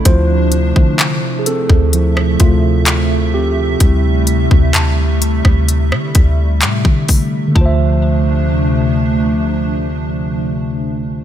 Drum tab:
HH |x-x-x-x-x-x-x---|x-x-x-x-x-x-x-o-|----------------|
CP |----x-------x---|----x-------x---|----------------|
SD |---------r------|-------r-r------|----------------|
BD |o--o---o--o-----|o--o---o--o--oo-|o---------------|